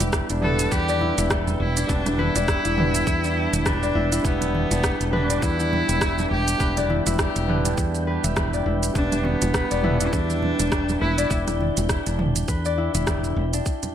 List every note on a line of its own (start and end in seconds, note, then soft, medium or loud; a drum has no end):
0.00 0.21 E1 medium
0.00 0.40 G3 medium
0.00 0.41 B3 medium
0.00 0.30 D4 medium
0.00 0.42 D4 medium
0.00 0.43 E4 medium
0.00 1.01 E4 medium
0.00 1.02 G4 medium
0.00 0.44 B4 medium
0.00 0.71 B4 loud
0.00 13.95 G5 medium
0.00 closed hi-hat medium
0.00 high bongo medium
0.00 shaker medium
0.13 kick loud
0.13 cross-stick loud
0.13 shaker medium
0.30 0.67 E1 medium
0.30 1.77 D4 medium
0.30 closed hi-hat soft
0.30 shaker soft
0.40 1.85 G3 medium
0.40 1.86 B3 medium
0.40 1.86 D4 medium
0.40 1.87 E4 medium
0.40 0.73 A4 loud
0.40 1.87 B4 medium
0.40 mid tom medium
0.59 closed hi-hat medium
0.59 shaker medium
0.72 1.11 E2 medium
0.72 1.31 G4 loud
0.72 2.18 B4 medium
0.72 kick loud
0.72 shaker medium
0.88 2.35 D5 loud
0.88 high conga soft
0.88 shaker soft
1.01 1.18 E4 medium
1.01 low conga medium
1.18 1.55 E1 loud
1.18 2.48 E4 loud
1.18 cross-stick soft
1.18 closed hi-hat medium
1.18 shaker medium
1.30 kick loud
1.30 cross-stick loud
1.30 shaker medium
1.48 low conga medium
1.48 shaker soft
1.60 1.83 E1 medium
1.60 1.91 E4 medium
1.77 3.24 D4 medium
1.77 closed hi-hat medium
1.77 shaker medium
1.87 2.29 E1 loud
1.87 2.73 G3 medium
1.87 2.74 B3 medium
1.87 2.74 D4 medium
1.87 2.21 D4 loud
1.87 2.75 E4 medium
1.87 kick loud
1.87 shaker medium
1.91 2.75 B4 medium
2.06 cross-stick soft
2.06 closed hi-hat soft
2.06 low conga loud
2.06 shaker soft
2.18 3.67 E4 loud
2.18 3.65 B4 loud
2.18 high bongo soft
2.18 high conga medium
2.35 2.57 E1 medium
2.35 3.82 D5 loud
2.35 closed hi-hat medium
2.35 high bongo soft
2.35 shaker medium
2.48 2.65 E4 loud
2.48 kick loud
2.48 cross-stick loud
2.48 shaker medium
2.65 3.02 E1 medium
2.65 3.95 E4 loud
2.65 closed hi-hat soft
2.65 shaker soft
2.76 2.90 G3 medium
2.76 2.90 B3 medium
2.76 2.90 D4 medium
2.76 2.91 E4 medium
2.76 2.91 B4 medium
2.76 mid tom medium
2.76 high conga medium
2.95 closed hi-hat medium
2.95 shaker medium
3.07 3.47 E2 medium
3.07 kick loud
3.07 shaker medium
3.24 4.70 D4 medium
3.24 shaker soft
3.53 3.90 E1 loud
3.53 closed hi-hat soft
3.53 high conga medium
3.53 shaker medium
3.66 4.24 D4 loud
3.66 5.12 B4 loud
3.66 kick loud
3.66 cross-stick loud
3.66 mid tom medium
3.66 shaker medium
3.83 5.30 D5 loud
3.83 shaker soft
3.95 4.18 E1 medium
3.95 4.12 E4 loud
4.12 5.42 E4 loud
4.12 closed hi-hat medium
4.12 shaker medium
4.23 4.64 E1 loud
4.23 5.09 G3 medium
4.23 5.09 B3 medium
4.23 5.09 B3 loud
4.23 5.10 D4 medium
4.23 5.11 E4 medium
4.23 kick loud
4.23 shaker medium
4.27 5.11 B4 medium
4.41 closed hi-hat soft
4.41 low conga medium
4.41 shaker soft
4.54 high bongo soft
4.54 high conga medium
4.71 4.92 E1 medium
4.71 6.18 D4 medium
4.71 closed hi-hat medium
4.71 high bongo medium
4.71 shaker medium
4.83 kick loud
4.83 cross-stick loud
4.83 shaker medium
5.00 5.37 E1 medium
5.00 closed hi-hat soft
5.00 shaker soft
5.11 6.56 G3 medium
5.11 6.56 B3 medium
5.11 6.57 D4 medium
5.11 5.44 D4 loud
5.11 6.57 E4 medium
5.11 6.60 B4 loud
5.11 mid tom medium
5.15 6.58 B4 medium
5.30 6.77 D5 loud
5.30 closed hi-hat medium
5.30 shaker medium
5.42 5.82 E2 medium
5.42 5.59 E4 loud
5.42 6.30 E4 loud
5.42 kick loud
5.42 shaker medium
5.60 6.89 E4 loud
5.60 high conga soft
5.60 shaker soft
5.73 low conga medium
5.89 6.26 E1 loud
5.89 cross-stick soft
5.89 closed hi-hat soft
5.89 shaker medium
6.01 kick loud
6.01 cross-stick loud
6.01 shaker medium
6.18 7.65 D4 medium
6.18 low conga medium
6.18 shaker soft
6.31 6.54 E1 medium
6.31 6.86 G4 loud
6.48 closed hi-hat medium
6.48 shaker medium
6.58 7.00 E1 loud
6.58 7.44 G3 medium
6.58 7.45 B3 medium
6.58 7.45 D4 medium
6.58 7.46 E4 medium
6.58 8.07 B4 loud
6.58 7.46 B4 medium
6.58 kick loud
6.58 shaker medium
6.77 8.53 D5 loud
6.77 cross-stick soft
6.77 closed hi-hat soft
6.77 low conga medium
6.77 shaker soft
6.89 7.06 E4 loud
6.89 high bongo soft
6.89 high conga medium
7.06 7.27 E1 medium
7.06 8.65 E4 loud
7.06 closed hi-hat soft
7.06 high bongo medium
7.06 shaker medium
7.19 kick loud
7.19 cross-stick loud
7.19 shaker medium
7.36 7.73 E1 medium
7.36 closed hi-hat soft
7.36 shaker soft
7.47 7.61 G3 medium
7.47 7.61 B3 medium
7.47 7.61 D4 medium
7.47 7.61 E4 medium
7.47 7.62 B4 medium
7.47 mid tom medium
7.47 high conga medium
7.65 9.12 D4 medium
7.65 closed hi-hat medium
7.65 shaker medium
7.78 8.17 E2 medium
7.78 kick loud
7.78 shaker medium
7.95 shaker soft
8.07 8.36 B4 medium
8.24 8.61 E1 loud
8.24 9.96 E5 medium
8.24 closed hi-hat medium
8.24 high conga medium
8.24 shaker medium
8.36 9.54 B4 medium
8.36 kick loud
8.36 cross-stick loud
8.36 mid tom medium
8.36 shaker medium
8.53 9.71 D5 medium
8.53 shaker soft
8.66 8.89 E1 medium
8.66 9.83 E4 medium
8.83 closed hi-hat medium
8.83 shaker medium
8.93 9.35 E1 medium
8.93 9.80 G3 medium
8.93 9.80 B3 medium
8.93 9.80 D4 medium
8.93 9.27 D4 loud
8.93 9.81 E4 medium
8.93 kick loud
8.93 shaker medium
8.97 9.82 B4 medium
9.12 10.59 D4 medium
9.12 closed hi-hat soft
9.12 low conga medium
9.12 shaker soft
9.24 10.09 B3 loud
9.24 high bongo soft
9.24 high conga medium
9.42 9.63 E1 loud
9.42 closed hi-hat medium
9.42 high bongo medium
9.42 shaker medium
9.54 11.01 B4 loud
9.54 kick loud
9.54 cross-stick loud
9.54 shaker medium
9.71 10.08 E1 medium
9.71 11.18 D5 loud
9.71 closed hi-hat soft
9.71 shaker soft
9.82 11.27 G3 medium
9.82 11.27 B3 medium
9.82 11.28 D4 medium
9.82 10.00 E4 loud
9.82 11.28 E4 medium
9.82 11.29 B4 medium
9.82 mid tom medium
10.01 11.30 E4 loud
10.01 closed hi-hat medium
10.01 shaker medium
10.07 10.14 E4 medium
10.13 10.53 E2 medium
10.13 11.00 D4 loud
10.13 kick loud
10.13 shaker medium
10.30 high conga soft
10.30 shaker soft
10.42 low conga medium
10.59 10.96 E1 loud
10.59 12.06 D4 medium
10.59 cross-stick soft
10.59 closed hi-hat soft
10.59 shaker medium
10.72 kick loud
10.72 cross-stick loud
10.72 shaker medium
10.89 low conga medium
10.89 shaker soft
11.01 11.25 E1 medium
11.01 11.28 E4 medium
11.01 12.48 B4 loud
11.18 12.65 D5 loud
11.18 closed hi-hat medium
11.18 shaker medium
11.31 11.70 E1 loud
11.31 11.47 E4 loud
11.31 kick loud
11.31 shaker medium
11.47 12.77 E4 loud
11.47 cross-stick soft
11.47 closed hi-hat soft
11.47 low conga medium
11.47 shaker soft
11.60 high bongo soft
11.60 high conga medium
11.77 11.98 E1 medium
11.77 closed hi-hat medium
11.77 high bongo medium
11.77 shaker medium
11.89 kick loud
11.89 cross-stick medium
11.89 shaker medium
12.06 12.43 E1 medium
12.06 13.53 D4 medium
12.06 closed hi-hat soft
12.06 shaker soft
12.19 mid tom medium
12.19 high conga medium
12.36 closed hi-hat medium
12.36 shaker medium
12.48 12.88 E2 medium
12.48 13.95 B4 loud
12.48 kick loud
12.48 shaker medium
12.65 13.95 D5 loud
12.65 shaker soft
12.78 12.94 E4 loud
12.95 13.32 E1 loud
12.95 13.95 E4 loud
12.95 closed hi-hat soft
12.95 high conga medium
12.95 shaker medium
13.07 kick loud
13.07 cross-stick loud
13.07 mid tom medium
13.07 shaker medium
13.24 shaker soft
13.36 13.60 E1 medium
13.53 13.95 D4 medium
13.53 closed hi-hat medium
13.53 shaker medium
13.66 kick medium
13.66 shaker medium
13.83 closed hi-hat soft
13.83 low conga medium
13.83 shaker soft